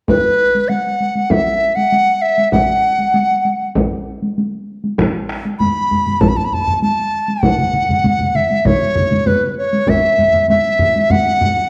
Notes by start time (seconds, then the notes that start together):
0.08 B4, taiko, taiko high
0.55 taiko high
0.69 F#5, taiko high
1.00 taiko high
1.15 taiko high
1.31 E5, taiko, taiko high
1.75 F#5, taiko high
1.92 taiko high
2.22 E5
2.38 taiko high
2.52 F#5, taiko, taiko high
2.99 taiko high
3.14 taiko high
3.45 taiko high
3.75 taiko, taiko high
4.22 taiko high
4.38 taiko high
4.84 taiko high
4.98 taiko rim, taiko, taiko high
5.29 taiko rim
5.45 taiko high
5.59 B5, taiko low-mid, taiko high
5.91 taiko low-mid, taiko high
6.06 taiko low-mid, taiko high
6.21 A5, taiko, taiko low-mid, taiko high
6.28 B5
6.37 A5, taiko low-mid
6.45 B5
6.52 A5, taiko low-mid
6.67 taiko low-mid
6.82 A5, taiko high
7.28 taiko high
7.43 F#5, taiko, taiko low-mid, taiko mid, taiko high
7.58 taiko low-mid, taiko mid
7.73 taiko low-mid, taiko mid
7.89 taiko low-mid, taiko mid, taiko high
8.04 taiko low-mid, taiko mid, taiko high
8.19 taiko low-mid, taiko mid
8.35 E5, taiko low-mid, taiko mid, taiko high
8.51 taiko high
8.65 C#5, taiko, taiko low-mid, taiko mid, taiko high
8.95 taiko low-mid, taiko mid
9.11 taiko low-mid, taiko mid, taiko high
9.26 B4, taiko low-mid, taiko mid, taiko high
9.59 C#5
9.73 taiko high
9.87 E5, taiko, taiko low-mid, taiko high
10.04 taiko high
10.18 taiko low-mid, taiko high
10.33 taiko low-mid, taiko high
10.48 E5, taiko low-mid, taiko high
10.66 taiko high
10.79 taiko low-mid
10.96 taiko high
11.10 F#5, taiko low-mid, taiko high
11.27 taiko high
11.41 taiko low-mid, taiko high
11.57 taiko high